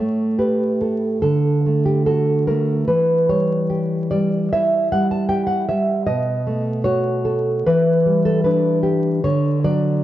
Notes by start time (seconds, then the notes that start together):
Already playing: A2 C#5
0.00 A3
0.39 G4 B4
0.81 A4
1.22 D3 A4
1.66 A3
1.85 G4
2.06 F#4 A4
2.47 A3 A#4
2.88 E3 B4
3.29 G3 C#5
3.70 G4
4.11 G3 D5
4.53 E4 E5
4.92 G3 F#5
5.11 A5
5.29 G4 G5
5.47 F#5
5.69 G3 E5
6.06 B2 D#5
6.47 A3
6.84 F#4 C#5
7.25 A4
7.66 E3 B4
8.06 G3
8.25 A4
8.44 D4 B4
8.83 G4
9.24 D3 C#5
9.64 F#3 D5